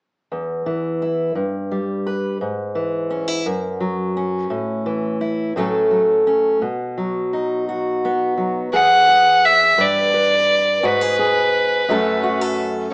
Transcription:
0.32 steel-string acoustic guitar E2
0.66 steel-string acoustic guitar E3
1.02 steel-string acoustic guitar E4
1.35 steel-string acoustic guitar G2
1.71 steel-string acoustic guitar G3
2.07 steel-string acoustic guitar B4
2.41 steel-string acoustic guitar G#2
2.75 steel-string acoustic guitar E3
3.10 steel-string acoustic guitar C#4
3.28 steel-string acoustic guitar E4
3.46 steel-string acoustic guitar F#2
3.80 steel-string acoustic guitar F#3
4.17 steel-string acoustic guitar C#4
4.50 steel-string acoustic guitar A2
4.86 steel-string acoustic guitar E3
5.21 steel-string acoustic guitar E4
5.56 steel-string acoustic guitar A2 F#3 A3 C#4 A4
5.91 steel-string acoustic guitar F#3
6.27 steel-string acoustic guitar C#4
6.62 steel-string acoustic guitar B2
6.98 steel-string acoustic guitar F#3
7.33 steel-string acoustic guitar D#4
7.69 steel-string acoustic guitar F#4
8.05 steel-string acoustic guitar B3
8.37 steel-string acoustic guitar F#3
8.72 steel-string acoustic guitar E2 G#4, fiddle F#5
9.09 steel-string acoustic guitar G#4
9.45 fiddle E5
9.78 steel-string acoustic guitar G2 B4, fiddle D5
10.14 steel-string acoustic guitar B4
10.83 steel-string acoustic guitar G#2 F#4, fiddle B4
11.01 steel-string acoustic guitar G#4
11.19 steel-string acoustic guitar G#4
11.88 steel-string acoustic guitar F#2 F#3 A3 C#4 A4
12.23 steel-string acoustic guitar F#4
12.41 steel-string acoustic guitar A4

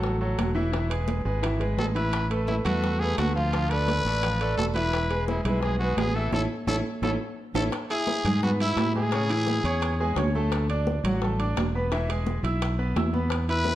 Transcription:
Already playing: fingered electric bass A1, grand piano F#3 F#4 A4
0.03 high bongo, high conga
0.21 grand piano F#3 F#4 A4, high conga
0.38 fingered electric bass E1, high bongo, low bongo, high conga, high timbale, low timbale
0.55 grand piano E3 E4 E5, high conga
0.72 grand piano E3 E4 E5, high bongo, high conga, high timbale
0.90 grand piano G#3 G#4 B4, high conga, high timbale
1.08 high bongo, high conga, high timbale, low timbale
1.25 fingered electric bass G#1, grand piano G#3 G#4 B4, high bongo
1.43 grand piano E3 E4 E5, high bongo, high conga, high timbale
1.60 grand piano G#3 G#4 B4, high bongo, high conga, high timbale
1.77 fingered electric bass A1, trumpet A4, high bongo, low bongo, low timbale
1.95 grand piano E3 E4 E5, trumpet B4, high bongo, high conga, high timbale
2.13 high bongo, high conga, high timbale
2.31 grand piano A3 A4 B4, high conga, high timbale
2.48 trumpet E4, high bongo, high conga, low timbale
2.65 fingered electric bass E2, grand piano A3 A4 B4, trumpet F#4, high conga, low conga, high timbale
2.83 high bongo, high conga, low conga
3.00 grand piano A3 A4 B4, trumpet G#4, high conga
3.18 fingered electric bass D2, trumpet F#4, high bongo, low bongo, high conga, high timbale, low timbale
3.35 grand piano F3 F4 F5, trumpet F4, high conga
3.53 grand piano F3 F4 F5, high bongo, high conga, high timbale
3.70 grand piano A3 A4 D5, trumpet B4, high conga, high timbale
3.88 high bongo, high conga, high timbale, low timbale
4.05 fingered electric bass A1, grand piano A3 A4 D5, high bongo
4.23 grand piano F3 F4 F5, high bongo, high conga, high timbale
4.41 grand piano A3 A4 D5, high bongo, high conga, high timbale
4.57 fingered electric bass E1, trumpet A4, high bongo, low bongo, high conga, low timbale
4.75 grand piano E3 E4 E5, trumpet B4, high bongo, high conga, high timbale
4.93 high bongo, high conga, high timbale
5.11 grand piano G#3 G#4 B4, high conga, high timbale
5.27 trumpet E4, high bongo, high conga, low timbale
5.44 fingered electric bass B1, grand piano G#3 G#4 B4, trumpet E4, high conga, low conga, high timbale
5.61 trumpet G#4, high bongo, high conga, low conga
5.79 grand piano G#3 G#4 B4, trumpet F#4, high conga
5.97 fingered electric bass A1, trumpet G#4, high bongo, low bongo, high conga, high timbale, low timbale
6.15 grand piano E3 E4 E5, trumpet A4
6.32 fingered electric bass A1, grand piano C#4 E4 A4, trumpet A4, low bongo, high conga, high timbale
6.67 fingered electric bass A1, grand piano C#4 E4 A4, trumpet A4, low bongo, high conga, high timbale
7.02 fingered electric bass A1, grand piano C#4 E4 A4, trumpet A4, low bongo, high conga, high timbale
7.54 fingered electric bass A1, grand piano C#4 E4 A4, trumpet A4, low bongo, high conga, high timbale
7.72 high bongo, high conga, high timbale
7.90 grand piano E4 E5 E6, trumpet G#4, high conga, high timbale
8.07 high bongo, high conga, low timbale
8.24 fingered electric bass G#2, grand piano G#3 G#4 G#5, high conga, low conga, high timbale
8.43 grand piano B3 B4 B5, trumpet F#4, high bongo, high conga, low conga
8.60 grand piano E4 E5 E6, trumpet E4, high conga, high timbale
8.77 fingered electric bass A2, high bongo, low bongo, high conga, high timbale, low timbale
8.95 grand piano G#3 G#4 G#5, trumpet G#4, high conga
9.12 grand piano C#3 C#4 C#5, high bongo, high conga, high timbale
9.30 grand piano E3 E4 E5, high bongo, high conga, high timbale
9.47 high bongo, high conga, low timbale
9.64 fingered electric bass E2, grand piano C#4 C#5 C#6, high conga, high timbale
9.82 high bongo, high conga, high timbale
9.99 grand piano G#3 G#4 G#5, high bongo, high conga
10.16 fingered electric bass D2, grand piano C#4 C#5 C#6, high bongo, low bongo, high conga, high timbale, low timbale
10.34 grand piano A3 A4 A5, high bongo, high conga
10.52 high bongo, high conga, high timbale
10.70 grand piano D4 D5 D6, high conga, high timbale
10.87 high bongo, high conga, low timbale
11.04 fingered electric bass A1, grand piano F#3 F#4 F#5, high conga, low conga, high timbale
11.22 grand piano A3 A4 A5, high bongo, high conga, low conga
11.39 grand piano D4 D5 D6, high conga, high timbale
11.56 fingered electric bass E1, high bongo, low bongo, high conga, high timbale, low timbale
11.75 grand piano B3 B4 B5
11.92 grand piano E3 E4 E5, high bongo, high conga, high timbale
12.09 grand piano G#3 G#4 G#5, high bongo, high conga, high timbale
12.26 high bongo, high conga, low timbale
12.43 fingered electric bass B1, grand piano E4 E5 E6, high conga, high timbale
12.62 high bongo, high conga, high timbale
12.79 grand piano B3 B4 B5, high bongo, high conga
12.96 fingered electric bass E2, grand piano E4 E5 E6, high bongo, low bongo, high conga, high timbale, low timbale
13.13 grand piano B3 B4 B5, high bongo, high conga
13.30 high bongo, high timbale
13.48 grand piano E4 E5 E6, trumpet B4, high conga, high timbale
13.65 high bongo, high conga, low timbale

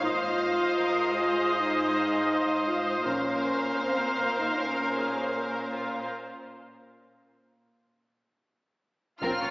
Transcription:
Already playing: violin section F5
0.02 double bass section G#1, cello section G#2, french horn section F4, violin section C5, viola section C5 D#5
0.78 violin section A#4
1.16 french horn section F4, violin section G#4
1.54 french horn section D#4
2.30 violin section C5
2.67 french horn section F4
3.05 double bass section A#1, cello section A#2, french horn section C#4, viola section A#4 C5, violin section F5, taiko
3.82 french horn section C4
4.19 french horn section A#3, taiko
4.39 french horn section D#4
4.55 french horn section C#4, violin section A#4
4.97 violin section G#4
5.34 violin section A#4
5.72 violin section F4
9.21 double bass section A#1, tuba A#1, trombone section F3 C#4, violin section C4 A#4 F6, cello section F4, viola section F4, french horn section F4, taiko, sub drop
9.41 double bass section A#1, violin section F4 C#5

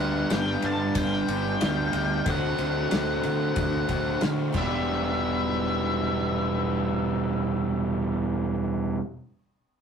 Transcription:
Already playing: fingered electric bass D2, overdriven electric guitar G2 D3 G3 B3 D4 G4, twelve-string acoustic guitar D4, lead electric guitar F#5
0.30 fingered electric bass G1, twelve-string acoustic guitar D4, lead electric guitar G5, snare, ride
0.62 fingered electric bass G2, twelve-string acoustic guitar B3, lead electric guitar A5, ride
0.95 fingered electric bass G1, twelve-string acoustic guitar D4, lead electric guitar G5, kick, ride
1.27 fingered electric bass G1, overdriven electric guitar G2 D3 G3 B3 D4 G4, ride
1.60 fingered electric bass D2, overdriven electric guitar G2 D3 G3 B3 D4, twelve-string acoustic guitar D4, snare, ride
1.65 overdriven electric guitar G4
1.93 fingered electric bass D2, ride
2.26 fingered electric bass D2, overdriven electric guitar D3 A3 C4 F#4, twelve-string acoustic guitar A3, kick, ride
2.30 lead electric guitar F#5
2.58 fingered electric bass D2, twelve-string acoustic guitar F#4, ride
2.91 fingered electric bass D2, twelve-string acoustic guitar C4, snare, ride
3.23 fingered electric bass D3, twelve-string acoustic guitar A3, ride
3.56 fingered electric bass D2, twelve-string acoustic guitar C4, kick, ride
3.88 fingered electric bass D2, overdriven electric guitar D3 A3 C4 F#4, twelve-string acoustic guitar F#4, kick, ride
4.20 overdriven electric guitar D3 A3 C4 F#4, fingered electric bass D3, twelve-string acoustic guitar C4, snare, ride
4.52 fingered electric bass E1, overdriven electric guitar E2 B2 E3 G3 B3, twelve-string acoustic guitar G3 B3 D4, kick, crash
4.57 overdriven electric guitar G4, lead electric guitar E5

